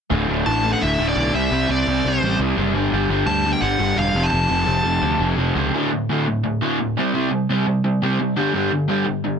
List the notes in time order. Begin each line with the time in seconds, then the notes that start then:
0.10 D1 D2 A2 D3
0.28 D1 D2 A2 D3
0.46 A1 D2 A2 D3 A5
0.64 D2 A2 D3
0.73 F#5
0.81 D1 D2 A2 D3 E5
0.99 D1 D2 A2 D3
1.08 D5
1.16 B1 D2 A2 D3
1.33 C2 C3 G3 C4 E5
1.51 C2 C3 G3 C4
1.69 C2 C3 G3 C4 D5
1.87 C2 C3 G3 C4
2.04 C2 C3 G3 C4 C5
2.22 A1 C3 G3 C4
2.39 C2 C3 G3 C4
2.57 F#1 C3 G3 C4
2.74 G1 G2 D3 G3
2.92 G1 G2 D3 G3
3.09 G1 G2 D3 G3
3.26 D2 G2 D3 G3 A5
3.45 G2 D3 G3
3.53 G5
3.62 G1 G2 D3 G3 F#5
3.79 G1 G2 D3 G3
3.96 E1 G2 D3 G3 F5
4.13 F1 F2 C3 F3
4.23 A5
4.30 F1 F2 C3 F3 A5
4.49 F1 F2 C3 F3
4.65 F1 F2 C3 F3
4.84 F1 F2 C3 F3
5.02 D2 F2 C3 F3
5.19 F1 F2 C3 F3
5.36 F1 F2 C3 F3
5.55 C#2 F2 C3 F3
5.74 D2 A2 D3
5.92 D2 A2
6.09 D2 A2 D3
6.27 D2 A2
6.44 D2 A2
6.61 D2 A2 D3
6.80 D2 A2
6.97 C3 G3 C4
7.14 C3 G3 C4
7.30 C3 G3
7.49 C3 G3 C4
7.66 C3 G3
7.84 C3 G3
8.02 C3 G3 C4
8.20 C3 G3
8.36 G2 D3 G3
8.53 G2 D3 G3
8.71 G2 D3
8.88 G2 D3 G3
9.05 G2 D3
9.24 G2 D3